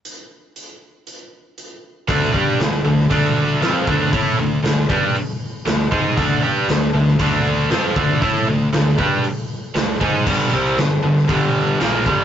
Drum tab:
CC |----------------|----------------|----------------|----------------|
HH |x---x---x---x---|o---o---o---o---|o---o---o---o---|o---o---o---o---|
SD |----------------|----o--o----o---|----o-------o---|----o--o----o---|
BD |----------------|o-o-----o-----o-|o-----o-------o-|o-------o-----o-|

CC |----------------|x---------------|
HH |o---o---o---o---|----o---o---o---|
SD |----o-------o---|----o--o----o---|
BD |o-----o-------o-|o-------o-----o-|